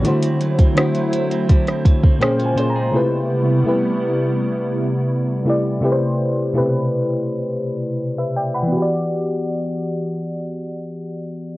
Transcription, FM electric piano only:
\new Staff \with { instrumentName = "FM electric piano" } { \time 4/4 \key e \minor \tempo 4 = 83 << { r2. \tuplet 3/2 { g''8 gis''8 ais''8 } | r1 | r2. r16 <b' e''>16 <d'' g''>16 <fis'' b''>16~ | <fis'' b''>16 r2. r8. | } \\ { <d a e' fis' c''>4 <d a e' fis' c''>4. r8 <ais, ais cis' gis' bis'>8 <ais, ais cis' gis' bis'>8 | <c a e' g' b'>4 <c a e' g' b'>4. r4 <c a e' g' d''>8 | <c a e' g' b' c''>4 <b, c a e' g' b'>4. r4. | <e b fis' g' d''>1 | } >> }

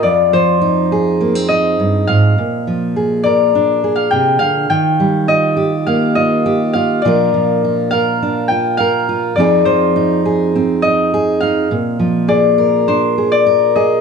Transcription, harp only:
\new Staff \with { instrumentName = "Harp" } { \time 4/4 \key bes \mixolydian \tempo 4 = 103 d''8 c''2 ees''4 f''8~ | f''4. d''4~ d''16 f''16 g''8 f''8 | g''4 ees''4 f''8 ees''4 f''8 | d''4. f''4 g''8 f''4 |
d''8 c''2 ees''4 f''8~ | f''4 d''4 c''8. d''8. ees''8 | }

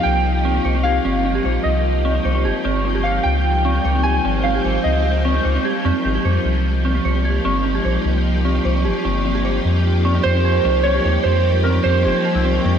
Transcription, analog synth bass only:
\new Staff \with { instrumentName = "Analog synth bass" } { \clef bass \time 4/4 \key c \phrygian \tempo 4 = 150 c,4~ c,16 r16 c,8. r16 g,,8. r16 bes,,16 r16 | c,4~ c,16 r16 c,8 g,,16 r16 g,,4~ g,,16 r16 | des,4~ des,16 r16 des,8. r16 aes,,8. r16 aes,,16 r16 | des,4~ des,16 r16 des,16 r8. f,16 r16 aes,,16 r16 f,16 r16 |
c,4~ c,16 r16 c,8. r16 g,,8. r16 bes,,16 r16 | c,4~ c,16 r16 c,8 g,,16 r16 g,,4~ g,,16 r16 | f,4~ f,16 r16 f,8. r16 c,8. r16 ees,16 r16 | f,4~ f,16 r16 f,8 f,,16 r8 c,8 r16 f,16 r16 | }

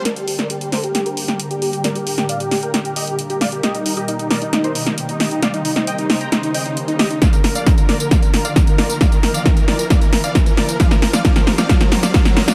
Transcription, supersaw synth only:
\new Staff \with { instrumentName = "Supersaw synth" } { \time 4/4 \key g \minor \tempo 4 = 134 <bes' d''>16 g'16 g'16 <bes' d''>16 g'16 g'16 <a' c''>16 g'16 g'16 <g' bes'>16 g'16 g'16 r16 g'16 g'16 g'16 | <bes' d''>16 g'16 g'16 g'16 <d'' f''>16 g'16 g'16 <bes' g''>16 g'16 g'16 <g' ees''>16 g'16 r16 g'16 <d'' f''>16 g'16 | <g' ees''>16 ees'16 ees'16 <g' ees''>16 ees'16 ees'16 <bes' d''>16 ees'16 ees'16 <ees' c''>16 ees'16 ees'16 r16 ees'16 ees'16 ees'16 | <d'' f''>16 ees'16 ees'16 ees'16 <ees'' g''>16 ees'16 ees'16 <g'' bes''>16 ees'16 ees'16 <ees'' g''>16 ees'16 r16 ees'16 <g' ees''>16 ees'16 |
<d'' f''>16 bes'16 bes'16 <d'' f''>16 bes'16 bes'16 <bes' d''>16 bes'16 <d'' f''>16 bes'16 bes'16 <d'' f''>16 bes'16 bes'16 <bes' d''>16 bes'16 | <d'' f''>16 bes'16 bes'16 <d'' f''>16 bes'16 bes'16 <bes' d''>16 bes'16 <d'' f''>16 bes'16 bes'16 <d'' f''>16 bes'16 bes'16 <bes' d''>16 bes'16 | <d'' f''>16 bes'16 bes'16 <d'' f''>16 <d'' f''>16 bes'16 bes'16 <d'' f''>16 <d'' f''>16 bes'16 bes'16 <d'' f''>16 <d'' f''>16 bes'16 bes'16 <d'' f''>16 | }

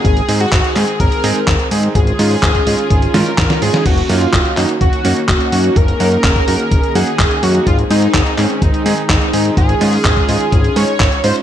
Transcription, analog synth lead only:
\new Staff \with { instrumentName = "Analog synth lead" } { \time 4/4 \key ges \lydian \tempo 4 = 126 aes'8. ges'8. aes'8 bes'4. r8 | aes'2~ aes'8 bes'4 aes'8 | ges'8 f'4 ees'8 ges'4 ges'4 | bes'2~ bes'8 aes'4 ges'8 |
f'8 ees'4 des'8 ees'4 ees'4 | aes'2~ aes'8 des''4 c''8 | }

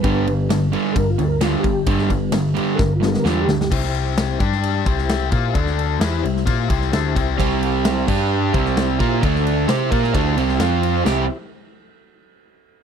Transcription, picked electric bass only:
\new Staff \with { instrumentName = "Picked electric bass" } { \clef bass \time 4/4 \key g \mixolydian \tempo 4 = 131 g,,2 g,,8 d,4 g,,8 | g,,2 g,,4 e,8 d,8 | \key c \mixolydian c,4. g,4 c,4 bes,8 | d,4 e,8 c,8 bes,8 c,8 d,8 c,8 |
c,4. g,4 c,4 bes,8 | d,4 c8 bes,8 d,8 c,8 f,4 | c,8 r2. r8 | }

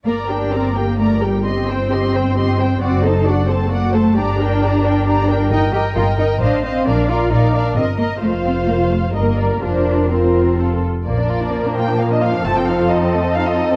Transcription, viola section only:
\new Staff \with { instrumentName = "Viola section" } { \time 3/4 \key g \minor \tempo 4 = 132 << { bes'8 g'8 bes'8 g'8 bes'8 g'8 | g'8 c''8 g'8 c''8 g'8 c''8 | fis'8 a'8 fis'8 a'8 fis'8 a'8 | g'8 bes'8 g'8 bes'8 g'8 bes'8 |
\key bes \major bes'8 bes'8 bes'8 bes'8 c''8 c''8 | bes'8 bes'8 bes'8 bes'8 bes'8 bes'8 | f'2 bes'4 | f'4 f'4 f'8 r8 |
f2.~ | f2. | } \\ { r2. | r2. | r2. | r2. |
r2. | r2. | r2. | r2. |
bes2. | c'2. | } >> }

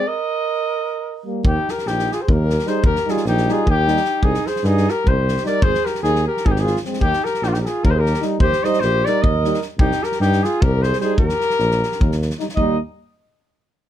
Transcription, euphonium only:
\new Staff \with { instrumentName = "Euphonium" } { \clef bass \time 7/8 \key ees \major \tempo 4 = 151 r2. g8~ | g8 r2 r8 g8~ | g8 g4 g4 g4 | r2. g8~ |
g8 r2 r8 aes8~ | aes8 r2 r8 g8~ | g8 g4 g4 g4 | r2. g8~ |
g8 r2 r8 g8 | g8 r2. | }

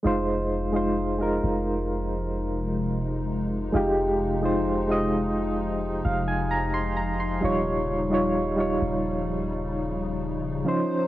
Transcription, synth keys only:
\new Staff \with { instrumentName = "Synth keys" } { \time 4/4 \key f \minor \tempo 4 = 65 << { r1 | r2 r8 f''16 aes''16 bes''16 c'''16 bes''16 c'''16~ | c'''16 r2. r8. | } \\ { <aes ees' f' c''>8 r16 <aes ees' f' c''>8 <aes ees' f' bes'>4. r4 r16 | <aes ees' f' g'>8 r16 <aes ees' f' c''>8 <aes ees' f' ees''>4. r4 r16 | <g ees' f' des''>8 r16 <g ees' f' des''>8 <g ees' f' des''>4. r8. <f des' ees' c''>8 | } >> }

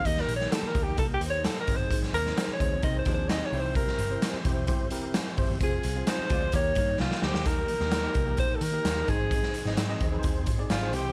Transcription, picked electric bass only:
\new Staff \with { instrumentName = "Picked electric bass" } { \clef bass \time 4/4 \key ees \major \tempo 4 = 130 ees,8 bes,,8 r8 d,8 c,8 ees,8. r16 aes,,16 g,,16 | aes,,8 ees,8 r8 d,8 c,8 ees,4 c,8~ | c,8 g,,8 r8 e,,8 g,,8 e,,8. r16 g,,16 g,,16 | f,,8 c,8 r8 d,8 ees,8 g,8 c,16 r16 d,16 ees,16 |
ees,8 r16 ees,8. c,8 bes,,8 ees8 ees,8 aes,,8~ | aes,,8 r16 aes,,16 aes,8 ees,8 ees,8 aes,8 aes,,8 c,8 | }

